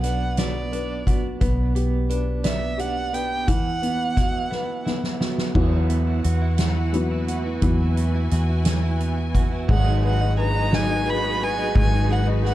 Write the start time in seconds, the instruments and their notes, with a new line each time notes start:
Already playing: fingered electric bass B1, clean electric guitar F#3 B3, upright piano B3 F#4 B4
0.02 clean electric guitar D4, upright piano B4, violin F#5, snare, closed hi-hat
0.37 clean electric guitar B3, upright piano F#4, violin D5, snare, closed hi-hat
0.72 clean electric guitar D4, upright piano B4, closed hi-hat
1.07 clean electric guitar B3, upright piano F#4, kick, closed hi-hat
1.41 fingered electric bass B1, upright piano B3, clean electric guitar B3, kick, closed hi-hat
1.75 clean electric guitar B3, upright piano G4, closed hi-hat
2.10 clean electric guitar D4, upright piano B4, closed hi-hat
2.44 clean electric guitar B3, upright piano D5, violin E5, snare, closed hi-hat
2.78 clean electric guitar D4, upright piano G4, violin F#5, closed hi-hat
3.13 clean electric guitar B3, upright piano B4, violin G5, closed hi-hat
3.47 fingered electric bass E2, upright piano E3, clean electric guitar E3, violin F#5, kick, closed hi-hat
3.82 upright piano B3, clean electric guitar B3, closed hi-hat
4.17 clean electric guitar E4, upright piano F#4, kick, snare, closed hi-hat
4.51 clean electric guitar B3, upright piano B4, snare
4.85 upright piano B3, clean electric guitar E4, snare
5.04 snare
5.20 clean electric guitar B3, upright piano F#4, snare
5.38 snare
5.54 fingered electric bass E2, upright piano E3 F#3 B3, clean electric guitar E3, string section E4 F#4 B4 F#5, kick, crash
5.72 clean electric guitar E4
5.90 clean electric guitar B3, closed hi-hat
6.07 clean electric guitar E4
6.24 fingered electric bass E2, clean electric guitar F#4, closed hi-hat
6.42 clean electric guitar E4
6.58 clean electric guitar E3, snare, closed hi-hat
6.76 clean electric guitar E4
6.93 upright piano E3 F#3 B3, clean electric guitar B3, closed hi-hat
7.11 clean electric guitar E4
7.28 clean electric guitar F#4, closed hi-hat
7.46 clean electric guitar E4
7.62 fingered electric bass E2, upright piano E3 F#3 B3, clean electric guitar E3, string section G#5, kick, closed hi-hat
7.81 clean electric guitar E4
7.97 clean electric guitar B3, closed hi-hat
8.15 clean electric guitar E4
8.31 fingered electric bass E2, clean electric guitar F#4, snare, closed hi-hat
8.49 clean electric guitar E4
8.65 clean electric guitar E3, snare, closed hi-hat
8.83 clean electric guitar E4
9.00 clean electric guitar B3, closed hi-hat
9.17 clean electric guitar E4
9.35 clean electric guitar F#4, kick, closed hi-hat
9.52 clean electric guitar E4
9.68 fingered electric bass G#1, clean electric guitar F#3, string section G#3 D#4 F#4 G#4 B4, upright piano G#3, violin F#5, kick, crash
9.86 clean electric guitar D#4, upright piano D#4
10.03 clean electric guitar G#4, upright piano B4, violin F#5, ride
10.20 clean electric guitar D#4, upright piano D#5
10.37 clean electric guitar G#4, upright piano B4, violin A#5, ride
10.55 clean electric guitar D#4, upright piano D#5
10.71 clean electric guitar F#3, upright piano D#4, violin G#5, snare, ride
10.89 clean electric guitar D#4, upright piano D#5
11.06 clean electric guitar G#4, upright piano B4, violin B5, ride
11.23 clean electric guitar D#4, upright piano D#5
11.41 clean electric guitar G#4, upright piano B4, violin G#5, ride
11.58 clean electric guitar D#4, upright piano D#5
11.74 fingered electric bass G#1, clean electric guitar F#3, upright piano G#3, violin G#5, kick, ride
11.92 clean electric guitar D#4, upright piano D#4
12.09 clean electric guitar G#4, upright piano B4, violin F#5, ride
12.26 clean electric guitar D#4, upright piano D#5
12.44 clean electric guitar G#4, upright piano B4, violin F#5, snare, ride